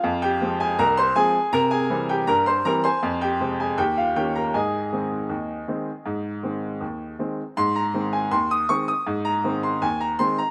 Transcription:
<<
  \new Staff \with { instrumentName = "Upright piano" } { \time 2/4 \key aes \major \tempo 4 = 80 <f' f''>16 <g' g''>8 <aes' aes''>16 <bes' bes''>16 <c'' c'''>16 <aes' aes''>8 | <bes' bes''>16 <aes' aes''>8 <g' g''>16 <bes' bes''>16 <c'' c'''>16 <bes' bes''>16 <c'' aes'' c'''>16~ | <c'' aes'' c'''>16 <g' g''>8 <aes' aes''>16 <g' g''>16 <f' f''>16 <g' g''>16 <bes' bes''>16 | <aes' ees'' aes''>2~ |
<aes' ees'' aes''>4. r8 | c'''16 bes''8 aes''16 c'''16 ees'''16 des'''16 ees'''16~ | ees'''16 bes''8 c'''16 aes''16 bes''16 c'''16 bes''16 | }
  \new Staff \with { instrumentName = "Upright piano" } { \clef bass \time 2/4 \key aes \major f,8 <f aes c'>8 c,8 <f aes c'>8 | c8 <e g c'>8 g,8 <e g c'>8 | f,8 <c aes c'>8 ees,8 <ees bes des'>8 | aes,8 <ees aes c'>8 ees,8 <ees aes c'>8 |
aes,8 <ees aes c'>8 ees,8 <ees aes c'>8 | aes,8 <ees aes c'>8 ees,8 <ees aes c'>8 | aes,8 <ees aes c'>8 ees,8 <ees aes c'>8 | }
>>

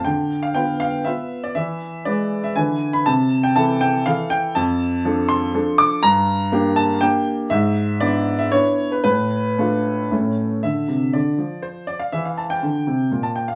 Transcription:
<<
  \new Staff \with { instrumentName = "Grand piano" } { \time 3/4 \key a \minor \tempo 4 = 120 g''8. f''16 g''8 f''8 e''8. d''16 | e''4 d''8. e''16 gis''8. b''16 | a''8. g''16 a''8 g''8 f''8 g''8 | \key d \minor a''4. c'''4 d'''8 |
bes''4. a''8 g''8 r8 | e''4 d''8. e''16 cis''8. b'16 | b'4 a'4 r4 | e''4 d''4 c''8 d''16 f''16 |
e''16 f''16 a''16 g''4. a''16 g''16 f''16 | }
  \new Staff \with { instrumentName = "Grand piano" } { \time 3/4 \key a \minor d4 <b f' b'>4 <b f' b'>4 | e4 <gis e' b'>4 <d e e' b'>4 | c4 <e e' a'>4 <e e' a'>4 | \key d \minor f,4 <f d' a'>4 <f d' a'>4 |
g,4 <bes d' g'>4 <bes d' g'>4 | gis,4 <b d' e'>4 <b d' e'>4 | a,4 <a d' f'>4 <a, a cis' e'>4 | d8 c8 d8 f4. |
e4 d8 c8 bes,4 | }
>>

